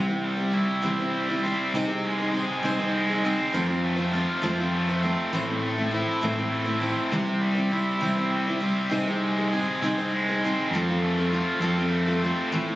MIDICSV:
0, 0, Header, 1, 4, 480
1, 0, Start_track
1, 0, Tempo, 597610
1, 1396, Time_signature, 6, 3, 24, 8
1, 10244, End_track
2, 0, Start_track
2, 0, Title_t, "Steel-string acoustic guitar"
2, 0, Program_c, 0, 25
2, 69, Note_on_c, 0, 72, 45
2, 80, Note_on_c, 0, 64, 44
2, 87, Note_on_c, 0, 60, 41
2, 88, Note_on_c, 0, 55, 39
2, 286, Note_off_c, 0, 72, 0
2, 295, Note_on_c, 0, 72, 46
2, 300, Note_off_c, 0, 64, 0
2, 308, Note_off_c, 0, 60, 0
2, 310, Note_on_c, 0, 64, 49
2, 314, Note_off_c, 0, 55, 0
2, 318, Note_on_c, 0, 60, 43
2, 323, Note_on_c, 0, 55, 39
2, 403, Note_off_c, 0, 55, 0
2, 413, Note_on_c, 0, 55, 57
2, 415, Note_off_c, 0, 60, 0
2, 420, Note_off_c, 0, 64, 0
2, 421, Note_off_c, 0, 72, 0
2, 425, Note_on_c, 0, 60, 54
2, 430, Note_on_c, 0, 64, 62
2, 431, Note_on_c, 0, 72, 61
2, 654, Note_off_c, 0, 64, 0
2, 656, Note_off_c, 0, 55, 0
2, 656, Note_off_c, 0, 60, 0
2, 657, Note_on_c, 0, 48, 69
2, 662, Note_off_c, 0, 72, 0
2, 662, Note_on_c, 0, 52, 70
2, 664, Note_on_c, 0, 64, 69
2, 665, Note_on_c, 0, 60, 77
2, 666, Note_on_c, 0, 55, 75
2, 671, Note_on_c, 0, 72, 84
2, 786, Note_off_c, 0, 48, 0
2, 788, Note_off_c, 0, 72, 0
2, 789, Note_off_c, 0, 52, 0
2, 789, Note_off_c, 0, 64, 0
2, 790, Note_off_c, 0, 55, 0
2, 790, Note_off_c, 0, 60, 0
2, 798, Note_on_c, 0, 72, 55
2, 807, Note_on_c, 0, 64, 49
2, 810, Note_on_c, 0, 60, 50
2, 814, Note_on_c, 0, 55, 43
2, 1025, Note_off_c, 0, 72, 0
2, 1033, Note_off_c, 0, 64, 0
2, 1035, Note_on_c, 0, 72, 51
2, 1043, Note_off_c, 0, 60, 0
2, 1043, Note_on_c, 0, 64, 53
2, 1045, Note_off_c, 0, 55, 0
2, 1057, Note_on_c, 0, 60, 45
2, 1059, Note_on_c, 0, 55, 45
2, 1149, Note_off_c, 0, 55, 0
2, 1155, Note_off_c, 0, 60, 0
2, 1155, Note_off_c, 0, 72, 0
2, 1159, Note_off_c, 0, 64, 0
2, 1159, Note_on_c, 0, 55, 59
2, 1165, Note_on_c, 0, 60, 64
2, 1174, Note_on_c, 0, 64, 56
2, 1175, Note_on_c, 0, 72, 64
2, 1395, Note_off_c, 0, 60, 0
2, 1398, Note_off_c, 0, 55, 0
2, 1404, Note_on_c, 0, 63, 77
2, 1405, Note_off_c, 0, 64, 0
2, 1405, Note_on_c, 0, 60, 85
2, 1406, Note_off_c, 0, 72, 0
2, 1410, Note_on_c, 0, 68, 82
2, 1416, Note_on_c, 0, 72, 80
2, 1502, Note_off_c, 0, 72, 0
2, 1512, Note_on_c, 0, 72, 58
2, 1518, Note_off_c, 0, 68, 0
2, 1520, Note_off_c, 0, 60, 0
2, 1520, Note_off_c, 0, 63, 0
2, 1528, Note_on_c, 0, 68, 43
2, 1536, Note_on_c, 0, 63, 43
2, 1746, Note_off_c, 0, 72, 0
2, 1756, Note_on_c, 0, 72, 52
2, 1757, Note_off_c, 0, 68, 0
2, 1767, Note_off_c, 0, 63, 0
2, 1767, Note_on_c, 0, 68, 48
2, 1779, Note_on_c, 0, 63, 43
2, 1861, Note_off_c, 0, 63, 0
2, 1865, Note_on_c, 0, 60, 55
2, 1871, Note_on_c, 0, 63, 52
2, 1875, Note_off_c, 0, 68, 0
2, 1876, Note_off_c, 0, 72, 0
2, 1885, Note_on_c, 0, 68, 62
2, 1897, Note_on_c, 0, 72, 62
2, 2102, Note_off_c, 0, 60, 0
2, 2112, Note_on_c, 0, 60, 69
2, 2115, Note_off_c, 0, 63, 0
2, 2118, Note_off_c, 0, 68, 0
2, 2121, Note_off_c, 0, 72, 0
2, 2125, Note_on_c, 0, 63, 77
2, 2128, Note_on_c, 0, 68, 81
2, 2131, Note_on_c, 0, 72, 87
2, 2228, Note_off_c, 0, 72, 0
2, 2235, Note_off_c, 0, 60, 0
2, 2238, Note_on_c, 0, 72, 55
2, 2241, Note_off_c, 0, 63, 0
2, 2241, Note_off_c, 0, 68, 0
2, 2250, Note_on_c, 0, 68, 56
2, 2260, Note_on_c, 0, 63, 48
2, 2468, Note_off_c, 0, 72, 0
2, 2478, Note_on_c, 0, 72, 51
2, 2482, Note_off_c, 0, 68, 0
2, 2489, Note_off_c, 0, 63, 0
2, 2492, Note_on_c, 0, 68, 48
2, 2511, Note_on_c, 0, 63, 48
2, 2598, Note_off_c, 0, 72, 0
2, 2599, Note_off_c, 0, 63, 0
2, 2601, Note_on_c, 0, 60, 63
2, 2605, Note_off_c, 0, 68, 0
2, 2609, Note_on_c, 0, 63, 62
2, 2613, Note_on_c, 0, 68, 67
2, 2621, Note_on_c, 0, 72, 68
2, 2835, Note_on_c, 0, 53, 78
2, 2836, Note_off_c, 0, 60, 0
2, 2836, Note_off_c, 0, 72, 0
2, 2841, Note_off_c, 0, 68, 0
2, 2843, Note_off_c, 0, 63, 0
2, 2844, Note_on_c, 0, 57, 74
2, 2844, Note_on_c, 0, 65, 80
2, 2846, Note_on_c, 0, 60, 76
2, 2846, Note_on_c, 0, 72, 83
2, 2932, Note_off_c, 0, 72, 0
2, 2941, Note_on_c, 0, 72, 55
2, 2950, Note_off_c, 0, 65, 0
2, 2957, Note_off_c, 0, 53, 0
2, 2960, Note_off_c, 0, 60, 0
2, 2960, Note_on_c, 0, 65, 45
2, 2962, Note_off_c, 0, 57, 0
2, 2970, Note_on_c, 0, 60, 42
2, 3173, Note_off_c, 0, 72, 0
2, 3182, Note_on_c, 0, 72, 55
2, 3191, Note_off_c, 0, 65, 0
2, 3198, Note_off_c, 0, 60, 0
2, 3201, Note_on_c, 0, 65, 47
2, 3208, Note_on_c, 0, 60, 41
2, 3307, Note_on_c, 0, 57, 52
2, 3308, Note_off_c, 0, 60, 0
2, 3311, Note_off_c, 0, 65, 0
2, 3311, Note_off_c, 0, 72, 0
2, 3318, Note_on_c, 0, 60, 54
2, 3321, Note_on_c, 0, 65, 67
2, 3334, Note_on_c, 0, 72, 62
2, 3547, Note_off_c, 0, 57, 0
2, 3549, Note_off_c, 0, 60, 0
2, 3549, Note_on_c, 0, 53, 84
2, 3551, Note_off_c, 0, 65, 0
2, 3554, Note_off_c, 0, 72, 0
2, 3556, Note_on_c, 0, 57, 74
2, 3559, Note_on_c, 0, 60, 87
2, 3560, Note_on_c, 0, 65, 77
2, 3564, Note_on_c, 0, 72, 86
2, 3665, Note_off_c, 0, 72, 0
2, 3675, Note_off_c, 0, 53, 0
2, 3675, Note_on_c, 0, 72, 51
2, 3678, Note_off_c, 0, 57, 0
2, 3680, Note_off_c, 0, 60, 0
2, 3680, Note_off_c, 0, 65, 0
2, 3695, Note_on_c, 0, 65, 51
2, 3705, Note_on_c, 0, 60, 51
2, 3914, Note_off_c, 0, 72, 0
2, 3922, Note_off_c, 0, 65, 0
2, 3924, Note_on_c, 0, 72, 56
2, 3932, Note_on_c, 0, 65, 47
2, 3933, Note_off_c, 0, 60, 0
2, 3942, Note_on_c, 0, 60, 38
2, 4040, Note_off_c, 0, 60, 0
2, 4040, Note_on_c, 0, 57, 51
2, 4042, Note_off_c, 0, 72, 0
2, 4046, Note_off_c, 0, 65, 0
2, 4049, Note_on_c, 0, 60, 59
2, 4056, Note_on_c, 0, 65, 60
2, 4060, Note_on_c, 0, 72, 66
2, 4272, Note_off_c, 0, 57, 0
2, 4280, Note_off_c, 0, 60, 0
2, 4280, Note_on_c, 0, 52, 79
2, 4282, Note_on_c, 0, 57, 80
2, 4284, Note_off_c, 0, 72, 0
2, 4285, Note_on_c, 0, 45, 70
2, 4288, Note_off_c, 0, 65, 0
2, 4290, Note_on_c, 0, 60, 80
2, 4292, Note_on_c, 0, 64, 76
2, 4294, Note_on_c, 0, 72, 81
2, 4386, Note_off_c, 0, 72, 0
2, 4396, Note_on_c, 0, 72, 50
2, 4399, Note_off_c, 0, 64, 0
2, 4400, Note_off_c, 0, 52, 0
2, 4401, Note_off_c, 0, 57, 0
2, 4403, Note_off_c, 0, 45, 0
2, 4406, Note_off_c, 0, 60, 0
2, 4408, Note_on_c, 0, 64, 46
2, 4415, Note_on_c, 0, 60, 45
2, 4416, Note_on_c, 0, 57, 42
2, 4620, Note_off_c, 0, 72, 0
2, 4625, Note_off_c, 0, 64, 0
2, 4629, Note_on_c, 0, 72, 45
2, 4635, Note_on_c, 0, 64, 45
2, 4636, Note_off_c, 0, 60, 0
2, 4645, Note_on_c, 0, 60, 51
2, 4646, Note_off_c, 0, 57, 0
2, 4656, Note_on_c, 0, 57, 42
2, 4736, Note_off_c, 0, 57, 0
2, 4739, Note_off_c, 0, 60, 0
2, 4745, Note_on_c, 0, 57, 47
2, 4746, Note_off_c, 0, 64, 0
2, 4749, Note_on_c, 0, 60, 49
2, 4755, Note_off_c, 0, 72, 0
2, 4756, Note_on_c, 0, 64, 57
2, 4768, Note_on_c, 0, 72, 58
2, 4989, Note_on_c, 0, 45, 75
2, 4994, Note_off_c, 0, 57, 0
2, 4995, Note_off_c, 0, 60, 0
2, 4995, Note_off_c, 0, 64, 0
2, 4996, Note_on_c, 0, 52, 72
2, 5000, Note_off_c, 0, 72, 0
2, 5002, Note_on_c, 0, 57, 82
2, 5004, Note_on_c, 0, 60, 80
2, 5005, Note_on_c, 0, 64, 73
2, 5010, Note_on_c, 0, 72, 81
2, 5096, Note_off_c, 0, 72, 0
2, 5104, Note_off_c, 0, 64, 0
2, 5105, Note_on_c, 0, 72, 55
2, 5113, Note_on_c, 0, 64, 47
2, 5115, Note_off_c, 0, 45, 0
2, 5119, Note_off_c, 0, 52, 0
2, 5119, Note_off_c, 0, 60, 0
2, 5122, Note_off_c, 0, 57, 0
2, 5129, Note_on_c, 0, 60, 42
2, 5136, Note_on_c, 0, 57, 42
2, 5333, Note_off_c, 0, 72, 0
2, 5341, Note_off_c, 0, 64, 0
2, 5342, Note_on_c, 0, 72, 60
2, 5348, Note_off_c, 0, 60, 0
2, 5351, Note_on_c, 0, 64, 51
2, 5353, Note_off_c, 0, 57, 0
2, 5357, Note_on_c, 0, 60, 45
2, 5363, Note_on_c, 0, 57, 47
2, 5453, Note_off_c, 0, 57, 0
2, 5463, Note_off_c, 0, 60, 0
2, 5463, Note_on_c, 0, 57, 58
2, 5472, Note_off_c, 0, 64, 0
2, 5472, Note_off_c, 0, 72, 0
2, 5472, Note_on_c, 0, 60, 64
2, 5482, Note_on_c, 0, 64, 62
2, 5488, Note_on_c, 0, 72, 64
2, 5712, Note_off_c, 0, 57, 0
2, 5716, Note_on_c, 0, 52, 76
2, 5717, Note_off_c, 0, 60, 0
2, 5717, Note_on_c, 0, 48, 67
2, 5719, Note_off_c, 0, 72, 0
2, 5720, Note_off_c, 0, 64, 0
2, 5722, Note_on_c, 0, 55, 71
2, 5727, Note_on_c, 0, 60, 77
2, 5729, Note_on_c, 0, 72, 86
2, 5730, Note_on_c, 0, 64, 75
2, 5827, Note_off_c, 0, 72, 0
2, 5837, Note_on_c, 0, 72, 51
2, 5838, Note_off_c, 0, 64, 0
2, 5839, Note_off_c, 0, 48, 0
2, 5839, Note_off_c, 0, 52, 0
2, 5842, Note_off_c, 0, 55, 0
2, 5844, Note_off_c, 0, 60, 0
2, 5847, Note_on_c, 0, 64, 46
2, 5856, Note_on_c, 0, 60, 46
2, 5857, Note_on_c, 0, 55, 39
2, 6052, Note_off_c, 0, 72, 0
2, 6062, Note_on_c, 0, 72, 52
2, 6067, Note_off_c, 0, 64, 0
2, 6077, Note_on_c, 0, 64, 45
2, 6079, Note_off_c, 0, 60, 0
2, 6085, Note_off_c, 0, 55, 0
2, 6089, Note_on_c, 0, 60, 48
2, 6094, Note_on_c, 0, 55, 44
2, 6180, Note_off_c, 0, 55, 0
2, 6185, Note_off_c, 0, 60, 0
2, 6190, Note_on_c, 0, 55, 60
2, 6192, Note_off_c, 0, 72, 0
2, 6195, Note_on_c, 0, 60, 57
2, 6196, Note_off_c, 0, 64, 0
2, 6205, Note_on_c, 0, 64, 58
2, 6209, Note_on_c, 0, 72, 67
2, 6420, Note_off_c, 0, 55, 0
2, 6423, Note_on_c, 0, 48, 67
2, 6425, Note_off_c, 0, 60, 0
2, 6429, Note_on_c, 0, 55, 77
2, 6430, Note_on_c, 0, 52, 73
2, 6433, Note_off_c, 0, 64, 0
2, 6434, Note_on_c, 0, 60, 82
2, 6438, Note_off_c, 0, 72, 0
2, 6442, Note_on_c, 0, 64, 72
2, 6447, Note_on_c, 0, 72, 91
2, 6547, Note_off_c, 0, 72, 0
2, 6553, Note_off_c, 0, 48, 0
2, 6556, Note_off_c, 0, 52, 0
2, 6556, Note_off_c, 0, 55, 0
2, 6557, Note_on_c, 0, 72, 51
2, 6558, Note_off_c, 0, 60, 0
2, 6562, Note_off_c, 0, 64, 0
2, 6576, Note_on_c, 0, 64, 52
2, 6578, Note_on_c, 0, 60, 54
2, 6589, Note_on_c, 0, 55, 49
2, 6795, Note_off_c, 0, 72, 0
2, 6805, Note_on_c, 0, 72, 58
2, 6808, Note_off_c, 0, 64, 0
2, 6810, Note_off_c, 0, 60, 0
2, 6816, Note_off_c, 0, 55, 0
2, 6817, Note_on_c, 0, 64, 49
2, 6825, Note_on_c, 0, 60, 44
2, 6831, Note_on_c, 0, 55, 44
2, 6901, Note_off_c, 0, 55, 0
2, 6911, Note_on_c, 0, 55, 59
2, 6913, Note_off_c, 0, 64, 0
2, 6915, Note_off_c, 0, 60, 0
2, 6923, Note_on_c, 0, 64, 63
2, 6924, Note_off_c, 0, 72, 0
2, 6925, Note_on_c, 0, 60, 55
2, 6934, Note_on_c, 0, 72, 67
2, 7134, Note_off_c, 0, 60, 0
2, 7141, Note_off_c, 0, 55, 0
2, 7144, Note_on_c, 0, 60, 79
2, 7153, Note_off_c, 0, 72, 0
2, 7157, Note_off_c, 0, 64, 0
2, 7157, Note_on_c, 0, 63, 75
2, 7160, Note_on_c, 0, 68, 84
2, 7163, Note_on_c, 0, 72, 79
2, 7273, Note_off_c, 0, 60, 0
2, 7274, Note_off_c, 0, 72, 0
2, 7279, Note_off_c, 0, 63, 0
2, 7281, Note_off_c, 0, 68, 0
2, 7283, Note_on_c, 0, 72, 50
2, 7295, Note_on_c, 0, 68, 49
2, 7310, Note_on_c, 0, 63, 47
2, 7520, Note_off_c, 0, 72, 0
2, 7528, Note_off_c, 0, 68, 0
2, 7529, Note_on_c, 0, 72, 57
2, 7536, Note_off_c, 0, 63, 0
2, 7540, Note_on_c, 0, 68, 55
2, 7554, Note_on_c, 0, 63, 40
2, 7646, Note_off_c, 0, 72, 0
2, 7651, Note_off_c, 0, 68, 0
2, 7652, Note_off_c, 0, 63, 0
2, 7654, Note_on_c, 0, 60, 55
2, 7662, Note_on_c, 0, 63, 56
2, 7663, Note_on_c, 0, 68, 61
2, 7670, Note_on_c, 0, 72, 56
2, 7880, Note_off_c, 0, 60, 0
2, 7888, Note_off_c, 0, 63, 0
2, 7890, Note_on_c, 0, 60, 79
2, 7892, Note_off_c, 0, 68, 0
2, 7896, Note_off_c, 0, 72, 0
2, 7897, Note_on_c, 0, 63, 77
2, 7905, Note_on_c, 0, 68, 82
2, 7912, Note_on_c, 0, 72, 83
2, 8005, Note_off_c, 0, 72, 0
2, 8006, Note_off_c, 0, 60, 0
2, 8009, Note_off_c, 0, 63, 0
2, 8013, Note_off_c, 0, 68, 0
2, 8014, Note_on_c, 0, 72, 52
2, 8028, Note_on_c, 0, 68, 45
2, 8042, Note_on_c, 0, 63, 45
2, 8248, Note_off_c, 0, 72, 0
2, 8254, Note_off_c, 0, 68, 0
2, 8262, Note_off_c, 0, 63, 0
2, 8262, Note_on_c, 0, 72, 51
2, 8269, Note_on_c, 0, 68, 51
2, 8284, Note_on_c, 0, 63, 42
2, 8371, Note_off_c, 0, 72, 0
2, 8375, Note_off_c, 0, 68, 0
2, 8382, Note_off_c, 0, 63, 0
2, 8389, Note_on_c, 0, 60, 62
2, 8396, Note_on_c, 0, 63, 69
2, 8404, Note_on_c, 0, 68, 67
2, 8406, Note_on_c, 0, 72, 69
2, 8615, Note_off_c, 0, 60, 0
2, 8618, Note_off_c, 0, 63, 0
2, 8621, Note_on_c, 0, 53, 77
2, 8622, Note_off_c, 0, 68, 0
2, 8623, Note_off_c, 0, 72, 0
2, 8630, Note_on_c, 0, 57, 80
2, 8633, Note_on_c, 0, 65, 84
2, 8635, Note_on_c, 0, 60, 78
2, 8642, Note_on_c, 0, 69, 78
2, 8731, Note_off_c, 0, 53, 0
2, 8731, Note_off_c, 0, 69, 0
2, 8736, Note_off_c, 0, 57, 0
2, 8737, Note_off_c, 0, 65, 0
2, 8738, Note_off_c, 0, 60, 0
2, 8740, Note_on_c, 0, 69, 54
2, 8753, Note_on_c, 0, 65, 49
2, 8764, Note_on_c, 0, 60, 47
2, 8967, Note_off_c, 0, 69, 0
2, 8976, Note_on_c, 0, 69, 54
2, 8977, Note_off_c, 0, 65, 0
2, 8982, Note_off_c, 0, 60, 0
2, 8985, Note_on_c, 0, 65, 46
2, 8994, Note_on_c, 0, 60, 44
2, 9088, Note_off_c, 0, 69, 0
2, 9089, Note_off_c, 0, 60, 0
2, 9092, Note_on_c, 0, 57, 55
2, 9093, Note_off_c, 0, 65, 0
2, 9098, Note_on_c, 0, 60, 64
2, 9106, Note_on_c, 0, 65, 57
2, 9112, Note_on_c, 0, 69, 67
2, 9322, Note_off_c, 0, 60, 0
2, 9324, Note_on_c, 0, 53, 77
2, 9325, Note_off_c, 0, 57, 0
2, 9325, Note_off_c, 0, 65, 0
2, 9331, Note_off_c, 0, 69, 0
2, 9332, Note_on_c, 0, 60, 77
2, 9334, Note_on_c, 0, 57, 72
2, 9334, Note_on_c, 0, 65, 83
2, 9341, Note_on_c, 0, 69, 87
2, 9442, Note_off_c, 0, 53, 0
2, 9446, Note_off_c, 0, 60, 0
2, 9447, Note_off_c, 0, 57, 0
2, 9447, Note_off_c, 0, 65, 0
2, 9450, Note_off_c, 0, 69, 0
2, 9462, Note_on_c, 0, 69, 59
2, 9468, Note_on_c, 0, 65, 48
2, 9482, Note_on_c, 0, 60, 49
2, 9682, Note_off_c, 0, 69, 0
2, 9692, Note_on_c, 0, 69, 55
2, 9693, Note_off_c, 0, 65, 0
2, 9700, Note_off_c, 0, 60, 0
2, 9704, Note_on_c, 0, 65, 57
2, 9719, Note_on_c, 0, 60, 39
2, 9805, Note_off_c, 0, 69, 0
2, 9811, Note_off_c, 0, 65, 0
2, 9815, Note_on_c, 0, 57, 65
2, 9818, Note_off_c, 0, 60, 0
2, 9833, Note_on_c, 0, 60, 68
2, 9835, Note_on_c, 0, 65, 66
2, 9846, Note_on_c, 0, 69, 64
2, 10046, Note_off_c, 0, 57, 0
2, 10051, Note_off_c, 0, 60, 0
2, 10055, Note_on_c, 0, 45, 75
2, 10056, Note_off_c, 0, 65, 0
2, 10058, Note_off_c, 0, 69, 0
2, 10058, Note_on_c, 0, 52, 83
2, 10061, Note_on_c, 0, 60, 87
2, 10067, Note_on_c, 0, 69, 75
2, 10068, Note_on_c, 0, 57, 80
2, 10071, Note_on_c, 0, 64, 94
2, 10166, Note_off_c, 0, 45, 0
2, 10167, Note_off_c, 0, 52, 0
2, 10167, Note_off_c, 0, 69, 0
2, 10169, Note_off_c, 0, 60, 0
2, 10172, Note_off_c, 0, 57, 0
2, 10174, Note_off_c, 0, 64, 0
2, 10177, Note_on_c, 0, 69, 53
2, 10185, Note_on_c, 0, 64, 53
2, 10199, Note_on_c, 0, 60, 39
2, 10200, Note_on_c, 0, 57, 39
2, 10244, Note_off_c, 0, 57, 0
2, 10244, Note_off_c, 0, 60, 0
2, 10244, Note_off_c, 0, 64, 0
2, 10244, Note_off_c, 0, 69, 0
2, 10244, End_track
3, 0, Start_track
3, 0, Title_t, "Overdriven electric guitar"
3, 0, Program_c, 1, 29
3, 0, Note_on_c, 1, 48, 62
3, 195, Note_on_c, 1, 55, 58
3, 431, Note_on_c, 1, 64, 60
3, 671, Note_on_c, 1, 60, 68
3, 901, Note_off_c, 1, 55, 0
3, 910, Note_on_c, 1, 55, 51
3, 1149, Note_off_c, 1, 60, 0
3, 1152, Note_on_c, 1, 60, 60
3, 1153, Note_off_c, 1, 48, 0
3, 1394, Note_off_c, 1, 55, 0
3, 1395, Note_off_c, 1, 64, 0
3, 1395, Note_on_c, 1, 48, 63
3, 1641, Note_on_c, 1, 56, 54
3, 1880, Note_on_c, 1, 68, 57
3, 2112, Note_off_c, 1, 60, 0
3, 2115, Note_on_c, 1, 60, 66
3, 2356, Note_off_c, 1, 56, 0
3, 2365, Note_on_c, 1, 56, 51
3, 2598, Note_off_c, 1, 48, 0
3, 2604, Note_off_c, 1, 60, 0
3, 2607, Note_on_c, 1, 60, 63
3, 2839, Note_on_c, 1, 41, 69
3, 2840, Note_off_c, 1, 68, 0
3, 2842, Note_off_c, 1, 56, 0
3, 3085, Note_on_c, 1, 57, 58
3, 3319, Note_on_c, 1, 65, 60
3, 3554, Note_off_c, 1, 60, 0
3, 3557, Note_on_c, 1, 60, 63
3, 3796, Note_off_c, 1, 57, 0
3, 3805, Note_on_c, 1, 57, 55
3, 4030, Note_off_c, 1, 60, 0
3, 4033, Note_on_c, 1, 60, 55
3, 4041, Note_off_c, 1, 41, 0
3, 4272, Note_on_c, 1, 45, 61
3, 4281, Note_off_c, 1, 65, 0
3, 4283, Note_off_c, 1, 57, 0
3, 4515, Note_on_c, 1, 57, 58
3, 4752, Note_on_c, 1, 64, 59
3, 4998, Note_off_c, 1, 60, 0
3, 5001, Note_on_c, 1, 60, 69
3, 5224, Note_off_c, 1, 57, 0
3, 5233, Note_on_c, 1, 57, 55
3, 5469, Note_off_c, 1, 60, 0
3, 5472, Note_on_c, 1, 60, 59
3, 5477, Note_off_c, 1, 45, 0
3, 5710, Note_on_c, 1, 48, 53
3, 5718, Note_off_c, 1, 57, 0
3, 5718, Note_off_c, 1, 64, 0
3, 5951, Note_on_c, 1, 55, 53
3, 6202, Note_on_c, 1, 64, 56
3, 6439, Note_off_c, 1, 60, 0
3, 6442, Note_on_c, 1, 60, 59
3, 6674, Note_off_c, 1, 55, 0
3, 6684, Note_on_c, 1, 55, 52
3, 6914, Note_off_c, 1, 60, 0
3, 6916, Note_off_c, 1, 48, 0
3, 6917, Note_on_c, 1, 60, 68
3, 7162, Note_off_c, 1, 64, 0
3, 7163, Note_off_c, 1, 55, 0
3, 7165, Note_on_c, 1, 48, 67
3, 7403, Note_on_c, 1, 56, 53
3, 7636, Note_on_c, 1, 68, 56
3, 7882, Note_off_c, 1, 60, 0
3, 7885, Note_on_c, 1, 60, 70
3, 8115, Note_off_c, 1, 56, 0
3, 8125, Note_on_c, 1, 56, 61
3, 8356, Note_off_c, 1, 60, 0
3, 8359, Note_on_c, 1, 60, 61
3, 8363, Note_off_c, 1, 48, 0
3, 8585, Note_on_c, 1, 41, 58
3, 8598, Note_off_c, 1, 68, 0
3, 8603, Note_off_c, 1, 56, 0
3, 8822, Note_on_c, 1, 57, 59
3, 9064, Note_on_c, 1, 65, 60
3, 9305, Note_off_c, 1, 60, 0
3, 9309, Note_on_c, 1, 60, 68
3, 9535, Note_off_c, 1, 57, 0
3, 9544, Note_on_c, 1, 57, 52
3, 9777, Note_off_c, 1, 60, 0
3, 9786, Note_on_c, 1, 60, 60
3, 9790, Note_off_c, 1, 41, 0
3, 10022, Note_on_c, 1, 45, 61
3, 10030, Note_off_c, 1, 65, 0
3, 10031, Note_off_c, 1, 57, 0
3, 10032, Note_off_c, 1, 60, 0
3, 10244, Note_off_c, 1, 45, 0
3, 10244, End_track
4, 0, Start_track
4, 0, Title_t, "Fingered electric bass"
4, 0, Program_c, 2, 33
4, 0, Note_on_c, 2, 36, 87
4, 517, Note_off_c, 2, 36, 0
4, 672, Note_on_c, 2, 36, 70
4, 1238, Note_off_c, 2, 36, 0
4, 1395, Note_on_c, 2, 36, 95
4, 1960, Note_off_c, 2, 36, 0
4, 2119, Note_on_c, 2, 36, 81
4, 2683, Note_off_c, 2, 36, 0
4, 2843, Note_on_c, 2, 41, 86
4, 3406, Note_off_c, 2, 41, 0
4, 3570, Note_on_c, 2, 41, 76
4, 4130, Note_off_c, 2, 41, 0
4, 4281, Note_on_c, 2, 33, 96
4, 4845, Note_off_c, 2, 33, 0
4, 5003, Note_on_c, 2, 33, 76
4, 5566, Note_off_c, 2, 33, 0
4, 5718, Note_on_c, 2, 36, 97
4, 6283, Note_off_c, 2, 36, 0
4, 6438, Note_on_c, 2, 36, 80
4, 7003, Note_off_c, 2, 36, 0
4, 7167, Note_on_c, 2, 36, 97
4, 7729, Note_off_c, 2, 36, 0
4, 7887, Note_on_c, 2, 36, 83
4, 8448, Note_off_c, 2, 36, 0
4, 8601, Note_on_c, 2, 41, 96
4, 9164, Note_off_c, 2, 41, 0
4, 9315, Note_on_c, 2, 41, 84
4, 9879, Note_off_c, 2, 41, 0
4, 10244, End_track
0, 0, End_of_file